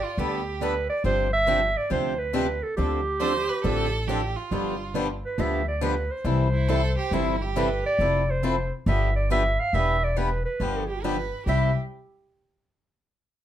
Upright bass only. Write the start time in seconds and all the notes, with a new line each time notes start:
0.17 D2
1.04 G1
1.91 D2
2.78 D2
3.64 A1
4.51 G1
5.38 D2
6.24 C2
7.11 G1
7.99 F1
8.86 G1
9.73 E1
10.60 G1
11.46 C2